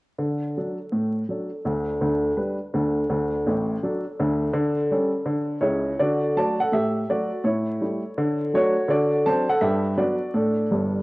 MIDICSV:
0, 0, Header, 1, 2, 480
1, 0, Start_track
1, 0, Key_signature, 2, "major"
1, 0, Tempo, 362538
1, 257, Time_signature, 4, 2, 24, 8
1, 14597, End_track
2, 0, Start_track
2, 0, Title_t, "Upright piano"
2, 0, Program_c, 0, 0
2, 247, Note_on_c, 0, 50, 56
2, 481, Control_c, 0, 64, 127
2, 660, Note_off_c, 0, 50, 0
2, 756, Control_c, 0, 64, 0
2, 761, Note_on_c, 0, 62, 35
2, 763, Note_on_c, 0, 54, 30
2, 770, Note_on_c, 0, 69, 39
2, 1019, Note_off_c, 0, 62, 0
2, 1020, Note_off_c, 0, 54, 0
2, 1025, Note_off_c, 0, 69, 0
2, 1221, Note_on_c, 0, 45, 57
2, 1629, Note_off_c, 0, 45, 0
2, 1705, Note_on_c, 0, 54, 31
2, 1719, Note_on_c, 0, 62, 31
2, 1723, Note_on_c, 0, 69, 36
2, 1967, Note_off_c, 0, 54, 0
2, 1978, Note_off_c, 0, 62, 0
2, 1981, Note_off_c, 0, 69, 0
2, 2184, Note_on_c, 0, 50, 56
2, 2191, Note_on_c, 0, 38, 57
2, 2409, Control_c, 0, 64, 127
2, 2566, Note_off_c, 0, 50, 0
2, 2571, Note_off_c, 0, 38, 0
2, 2659, Note_on_c, 0, 50, 59
2, 2663, Note_on_c, 0, 38, 55
2, 2680, Control_c, 0, 64, 0
2, 3043, Note_off_c, 0, 50, 0
2, 3046, Note_off_c, 0, 38, 0
2, 3134, Note_on_c, 0, 71, 42
2, 3138, Note_on_c, 0, 55, 41
2, 3141, Note_on_c, 0, 62, 38
2, 3400, Note_off_c, 0, 71, 0
2, 3403, Note_off_c, 0, 55, 0
2, 3405, Note_off_c, 0, 62, 0
2, 3623, Note_on_c, 0, 50, 59
2, 3629, Note_on_c, 0, 38, 55
2, 4006, Note_off_c, 0, 50, 0
2, 4010, Note_off_c, 0, 38, 0
2, 4097, Note_on_c, 0, 38, 58
2, 4099, Note_on_c, 0, 50, 60
2, 4349, Control_c, 0, 64, 127
2, 4483, Note_off_c, 0, 38, 0
2, 4484, Note_off_c, 0, 50, 0
2, 4588, Note_on_c, 0, 33, 63
2, 4591, Note_on_c, 0, 45, 64
2, 4594, Control_c, 0, 64, 0
2, 4969, Note_off_c, 0, 33, 0
2, 4971, Note_off_c, 0, 45, 0
2, 5073, Note_on_c, 0, 62, 48
2, 5074, Note_on_c, 0, 54, 45
2, 5084, Note_on_c, 0, 69, 46
2, 5334, Note_off_c, 0, 62, 0
2, 5335, Note_off_c, 0, 54, 0
2, 5342, Note_off_c, 0, 69, 0
2, 5554, Note_on_c, 0, 50, 66
2, 5559, Note_on_c, 0, 38, 63
2, 5933, Note_off_c, 0, 50, 0
2, 5936, Note_off_c, 0, 38, 0
2, 6002, Note_on_c, 0, 50, 82
2, 6264, Control_c, 0, 64, 127
2, 6419, Note_off_c, 0, 50, 0
2, 6503, Note_on_c, 0, 55, 48
2, 6503, Note_on_c, 0, 61, 42
2, 6516, Note_on_c, 0, 69, 52
2, 6518, Control_c, 0, 64, 0
2, 6767, Note_off_c, 0, 55, 0
2, 6767, Note_off_c, 0, 61, 0
2, 6776, Note_off_c, 0, 69, 0
2, 6959, Note_on_c, 0, 50, 68
2, 7377, Note_off_c, 0, 50, 0
2, 7425, Note_on_c, 0, 73, 63
2, 7427, Note_on_c, 0, 37, 62
2, 7428, Note_on_c, 0, 49, 57
2, 7438, Note_on_c, 0, 64, 44
2, 7825, Note_off_c, 0, 37, 0
2, 7826, Note_off_c, 0, 49, 0
2, 7896, Note_off_c, 0, 64, 0
2, 7923, Note_off_c, 0, 73, 0
2, 7935, Note_on_c, 0, 74, 69
2, 7941, Note_on_c, 0, 50, 69
2, 7972, Note_on_c, 0, 66, 54
2, 8180, Control_c, 0, 64, 127
2, 8349, Note_off_c, 0, 50, 0
2, 8404, Note_off_c, 0, 66, 0
2, 8418, Note_off_c, 0, 74, 0
2, 8429, Note_on_c, 0, 54, 37
2, 8435, Note_on_c, 0, 81, 78
2, 8440, Control_c, 0, 64, 0
2, 8449, Note_on_c, 0, 57, 42
2, 8449, Note_on_c, 0, 66, 42
2, 8454, Note_on_c, 0, 74, 54
2, 8691, Note_off_c, 0, 54, 0
2, 8705, Note_off_c, 0, 57, 0
2, 8706, Note_off_c, 0, 66, 0
2, 8727, Note_off_c, 0, 74, 0
2, 8738, Note_off_c, 0, 81, 0
2, 8740, Note_on_c, 0, 78, 72
2, 8759, Note_on_c, 0, 69, 59
2, 8898, Note_on_c, 0, 45, 55
2, 8904, Note_off_c, 0, 69, 0
2, 8906, Note_off_c, 0, 78, 0
2, 8913, Note_on_c, 0, 76, 76
2, 8920, Note_on_c, 0, 67, 53
2, 9307, Note_off_c, 0, 45, 0
2, 9358, Note_off_c, 0, 67, 0
2, 9387, Note_off_c, 0, 76, 0
2, 9389, Note_on_c, 0, 57, 39
2, 9398, Note_on_c, 0, 74, 66
2, 9400, Note_on_c, 0, 54, 36
2, 9405, Note_on_c, 0, 66, 53
2, 9651, Note_off_c, 0, 57, 0
2, 9659, Note_off_c, 0, 54, 0
2, 9840, Note_off_c, 0, 66, 0
2, 9850, Note_on_c, 0, 45, 65
2, 9858, Note_on_c, 0, 73, 61
2, 9869, Note_off_c, 0, 74, 0
2, 9881, Note_on_c, 0, 64, 48
2, 10101, Control_c, 0, 64, 127
2, 10262, Note_off_c, 0, 45, 0
2, 10332, Note_off_c, 0, 64, 0
2, 10341, Note_on_c, 0, 55, 39
2, 10352, Note_on_c, 0, 64, 41
2, 10356, Note_on_c, 0, 57, 39
2, 10358, Control_c, 0, 64, 0
2, 10604, Note_off_c, 0, 55, 0
2, 10613, Note_off_c, 0, 64, 0
2, 10615, Note_off_c, 0, 57, 0
2, 10826, Note_on_c, 0, 50, 77
2, 11068, Control_c, 0, 64, 127
2, 11129, Note_off_c, 0, 73, 0
2, 11231, Note_off_c, 0, 50, 0
2, 11304, Note_on_c, 0, 54, 41
2, 11313, Control_c, 0, 64, 0
2, 11316, Note_on_c, 0, 62, 52
2, 11320, Note_on_c, 0, 57, 43
2, 11320, Note_on_c, 0, 73, 86
2, 11328, Note_on_c, 0, 66, 61
2, 11566, Note_off_c, 0, 54, 0
2, 11575, Note_off_c, 0, 62, 0
2, 11579, Note_off_c, 0, 57, 0
2, 11760, Note_on_c, 0, 50, 75
2, 11761, Note_off_c, 0, 66, 0
2, 11785, Note_on_c, 0, 74, 75
2, 11787, Note_on_c, 0, 66, 53
2, 11790, Note_off_c, 0, 73, 0
2, 12023, Control_c, 0, 64, 127
2, 12176, Note_off_c, 0, 50, 0
2, 12230, Note_off_c, 0, 66, 0
2, 12260, Note_on_c, 0, 81, 84
2, 12263, Note_off_c, 0, 74, 0
2, 12265, Note_on_c, 0, 62, 49
2, 12266, Note_on_c, 0, 54, 44
2, 12273, Note_on_c, 0, 60, 45
2, 12276, Control_c, 0, 64, 0
2, 12296, Note_on_c, 0, 72, 66
2, 12527, Note_off_c, 0, 62, 0
2, 12528, Note_off_c, 0, 54, 0
2, 12533, Note_off_c, 0, 60, 0
2, 12567, Note_off_c, 0, 72, 0
2, 12570, Note_off_c, 0, 81, 0
2, 12571, Note_on_c, 0, 78, 82
2, 12572, Note_on_c, 0, 69, 66
2, 12724, Note_on_c, 0, 76, 75
2, 12729, Note_off_c, 0, 69, 0
2, 12729, Note_on_c, 0, 43, 71
2, 12740, Note_off_c, 0, 78, 0
2, 12745, Note_on_c, 0, 67, 64
2, 12987, Control_c, 0, 64, 127
2, 13142, Note_off_c, 0, 43, 0
2, 13189, Note_off_c, 0, 67, 0
2, 13199, Note_on_c, 0, 59, 37
2, 13201, Note_on_c, 0, 62, 45
2, 13208, Note_on_c, 0, 54, 42
2, 13210, Note_on_c, 0, 74, 68
2, 13211, Note_on_c, 0, 66, 49
2, 13212, Note_off_c, 0, 76, 0
2, 13233, Control_c, 0, 64, 0
2, 13469, Note_off_c, 0, 59, 0
2, 13470, Note_off_c, 0, 62, 0
2, 13475, Note_off_c, 0, 54, 0
2, 13662, Note_off_c, 0, 66, 0
2, 13693, Note_on_c, 0, 45, 62
2, 13695, Note_off_c, 0, 74, 0
2, 13708, Note_on_c, 0, 69, 67
2, 13718, Note_on_c, 0, 62, 50
2, 13923, Control_c, 0, 64, 127
2, 14104, Note_off_c, 0, 45, 0
2, 14183, Note_on_c, 0, 31, 54
2, 14191, Note_on_c, 0, 43, 55
2, 14196, Control_c, 0, 64, 0
2, 14542, Note_off_c, 0, 31, 0
2, 14547, Note_off_c, 0, 43, 0
2, 14597, Note_off_c, 0, 62, 0
2, 14597, Note_off_c, 0, 69, 0
2, 14597, End_track
0, 0, End_of_file